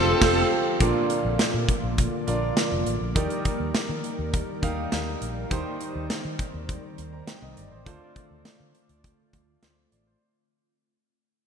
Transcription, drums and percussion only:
0.21 kick, snare, crash
0.80 kick, closed hi-hat
1.10 closed hi-hat
1.39 snare, closed hi-hat
1.69 kick, closed hi-hat
1.98 kick, closed hi-hat
2.28 closed hi-hat
2.57 snare, closed hi-hat
2.86 closed hi-hat
3.16 kick, closed hi-hat
3.30 closed hi-hat
3.45 kick, closed hi-hat
3.75 snare, closed hi-hat
4.04 closed hi-hat
4.34 kick, closed hi-hat
4.63 kick, closed hi-hat
4.92 snare, closed hi-hat
5.22 closed hi-hat
5.51 kick, closed hi-hat
5.81 closed hi-hat
6.10 snare, closed hi-hat
6.39 kick, closed hi-hat
6.69 kick, closed hi-hat
6.98 closed hi-hat
7.27 snare, closed hi-hat
7.57 closed hi-hat
7.86 kick, closed hi-hat
8.16 kick, closed hi-hat
8.45 snare, closed hi-hat
8.75 closed hi-hat
8.89 closed hi-hat
9.04 kick, closed hi-hat
9.33 kick, closed hi-hat
9.63 snare, closed hi-hat
9.92 closed hi-hat

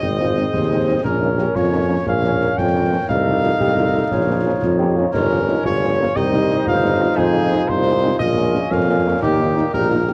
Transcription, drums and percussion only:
0.03 concert bass drum, snare
0.20 snare
0.37 snare
0.53 concert bass drum, snare
1.04 concert bass drum, snare, crash
1.38 snare
1.55 concert bass drum, snare
2.07 concert bass drum, snare
2.24 snare
2.41 snare
2.58 concert bass drum, snare
3.09 concert bass drum, snare
3.43 snare
3.60 concert bass drum, snare
4.11 concert bass drum, snare
4.62 concert bass drum, snare
5.14 concert bass drum, snare, crash
5.48 snare
5.65 concert bass drum, snare
6.16 concert bass drum, snare
6.33 snare
6.50 snare
6.67 concert bass drum, snare
7.18 concert bass drum, snare
7.52 snare
7.69 concert bass drum, snare
8.20 concert bass drum, snare
8.37 snare
8.55 snare
8.72 concert bass drum, snare
9.23 concert bass drum, snare, crash
9.57 snare
9.74 concert bass drum, snare

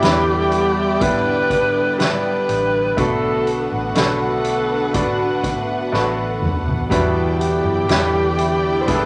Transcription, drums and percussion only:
0.02 snare, closed hi-hat
0.52 closed hi-hat
1.01 kick, closed hi-hat
1.50 kick, closed hi-hat
2.00 snare, closed hi-hat
2.49 closed hi-hat
2.98 kick, closed hi-hat
3.47 closed hi-hat
3.95 snare, closed hi-hat
4.45 closed hi-hat
4.94 kick, closed hi-hat
5.44 kick, closed hi-hat
5.93 snare
6.42 mid tom
6.67 floor tom
6.91 kick, closed hi-hat
7.41 closed hi-hat
7.89 snare, closed hi-hat
8.38 closed hi-hat
8.88 kick, closed hi-hat

